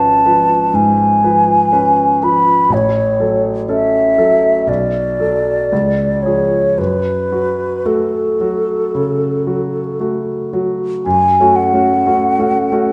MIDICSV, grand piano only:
0, 0, Header, 1, 2, 480
1, 0, Start_track
1, 0, Key_signature, 3, "minor"
1, 0, Tempo, 983607
1, 1324, Time_signature, 4, 2, 24, 8
1, 2284, Tempo, 1032702
1, 2764, Tempo, 1067616
1, 5164, Tempo, 998336
1, 6065, End_track
2, 0, Start_track
2, 0, Title_t, "Grand piano"
2, 0, Program_c, 0, 0
2, 0, Control_c, 0, 64, 127
2, 0, Note_on_c, 0, 32, 41
2, 0, Note_on_c, 0, 53, 29
2, 0, Note_on_c, 0, 61, 33
2, 0, Note_on_c, 0, 71, 36
2, 104, Note_off_c, 0, 61, 0
2, 105, Note_off_c, 0, 71, 0
2, 123, Note_off_c, 0, 53, 0
2, 123, Note_on_c, 0, 53, 31
2, 126, Note_on_c, 0, 71, 35
2, 341, Note_off_c, 0, 53, 0
2, 343, Note_off_c, 0, 32, 0
2, 343, Note_off_c, 0, 71, 0
2, 359, Note_on_c, 0, 44, 37
2, 602, Note_on_c, 0, 53, 31
2, 604, Note_on_c, 0, 71, 34
2, 746, Note_off_c, 0, 44, 0
2, 824, Note_off_c, 0, 53, 0
2, 825, Note_off_c, 0, 71, 0
2, 841, Note_on_c, 0, 61, 27
2, 842, Note_on_c, 0, 71, 33
2, 1063, Note_off_c, 0, 61, 0
2, 1064, Note_off_c, 0, 71, 0
2, 1084, Note_on_c, 0, 53, 32
2, 1086, Note_on_c, 0, 71, 34
2, 1304, Note_off_c, 0, 53, 0
2, 1306, Note_off_c, 0, 71, 0
2, 1316, Note_on_c, 0, 33, 41
2, 1333, Control_c, 0, 64, 0
2, 1401, Control_c, 0, 64, 127
2, 1561, Note_on_c, 0, 54, 25
2, 1563, Note_on_c, 0, 69, 27
2, 1781, Note_off_c, 0, 54, 0
2, 1782, Note_off_c, 0, 69, 0
2, 1799, Note_on_c, 0, 61, 32
2, 1801, Note_on_c, 0, 69, 30
2, 2019, Note_off_c, 0, 61, 0
2, 2020, Note_off_c, 0, 69, 0
2, 2039, Note_on_c, 0, 54, 28
2, 2041, Note_on_c, 0, 69, 32
2, 2261, Note_off_c, 0, 33, 0
2, 2264, Note_off_c, 0, 54, 0
2, 2265, Note_off_c, 0, 69, 0
2, 2278, Note_on_c, 0, 35, 41
2, 2293, Control_c, 0, 64, 0
2, 2382, Control_c, 0, 64, 127
2, 2523, Note_on_c, 0, 54, 28
2, 2527, Note_on_c, 0, 69, 30
2, 2746, Note_off_c, 0, 54, 0
2, 2747, Note_off_c, 0, 35, 0
2, 2748, Note_off_c, 0, 69, 0
2, 2769, Note_on_c, 0, 37, 37
2, 2771, Control_c, 0, 64, 0
2, 2842, Control_c, 0, 64, 127
2, 3007, Note_on_c, 0, 53, 27
2, 3009, Note_on_c, 0, 68, 29
2, 3229, Note_off_c, 0, 53, 0
2, 3231, Note_off_c, 0, 68, 0
2, 3234, Note_off_c, 0, 37, 0
2, 3243, Note_on_c, 0, 42, 35
2, 3253, Control_c, 0, 64, 0
2, 3345, Control_c, 0, 64, 127
2, 3485, Note_on_c, 0, 54, 25
2, 3488, Note_on_c, 0, 66, 28
2, 3710, Note_off_c, 0, 54, 0
2, 3711, Note_off_c, 0, 66, 0
2, 3727, Note_on_c, 0, 57, 27
2, 3727, Note_on_c, 0, 66, 30
2, 3953, Note_off_c, 0, 57, 0
2, 3953, Note_off_c, 0, 66, 0
2, 3975, Note_on_c, 0, 54, 28
2, 3977, Note_on_c, 0, 66, 29
2, 4196, Note_off_c, 0, 42, 0
2, 4198, Note_off_c, 0, 54, 0
2, 4199, Note_off_c, 0, 66, 0
2, 4218, Note_on_c, 0, 49, 31
2, 4453, Note_on_c, 0, 54, 26
2, 4454, Note_on_c, 0, 66, 31
2, 4596, Note_off_c, 0, 49, 0
2, 4671, Note_off_c, 0, 54, 0
2, 4671, Note_off_c, 0, 66, 0
2, 4691, Note_on_c, 0, 57, 27
2, 4695, Note_on_c, 0, 66, 30
2, 4911, Note_off_c, 0, 57, 0
2, 4913, Note_off_c, 0, 66, 0
2, 4930, Note_on_c, 0, 54, 28
2, 4931, Note_on_c, 0, 66, 28
2, 5148, Note_off_c, 0, 54, 0
2, 5148, Note_off_c, 0, 66, 0
2, 5168, Note_on_c, 0, 42, 41
2, 5172, Control_c, 0, 64, 0
2, 5263, Control_c, 0, 64, 127
2, 5325, Note_off_c, 0, 42, 0
2, 5332, Note_on_c, 0, 57, 30
2, 5333, Note_on_c, 0, 61, 31
2, 5339, Note_on_c, 0, 66, 36
2, 5476, Note_off_c, 0, 57, 0
2, 5477, Note_off_c, 0, 61, 0
2, 5480, Note_off_c, 0, 66, 0
2, 5490, Note_on_c, 0, 57, 28
2, 5495, Note_on_c, 0, 61, 30
2, 5496, Note_on_c, 0, 66, 32
2, 5634, Note_off_c, 0, 57, 0
2, 5636, Note_off_c, 0, 61, 0
2, 5637, Note_off_c, 0, 66, 0
2, 5649, Note_on_c, 0, 57, 29
2, 5652, Note_on_c, 0, 61, 32
2, 5653, Note_on_c, 0, 66, 33
2, 5792, Note_off_c, 0, 57, 0
2, 5793, Note_off_c, 0, 61, 0
2, 5794, Note_off_c, 0, 66, 0
2, 5808, Note_on_c, 0, 57, 32
2, 5808, Note_on_c, 0, 61, 34
2, 5811, Note_on_c, 0, 66, 35
2, 5950, Note_off_c, 0, 57, 0
2, 5950, Note_off_c, 0, 61, 0
2, 5951, Note_off_c, 0, 66, 0
2, 5966, Note_on_c, 0, 57, 32
2, 5967, Note_on_c, 0, 61, 29
2, 5971, Note_on_c, 0, 66, 33
2, 6065, Note_off_c, 0, 57, 0
2, 6065, Note_off_c, 0, 61, 0
2, 6065, Note_off_c, 0, 66, 0
2, 6065, End_track
0, 0, End_of_file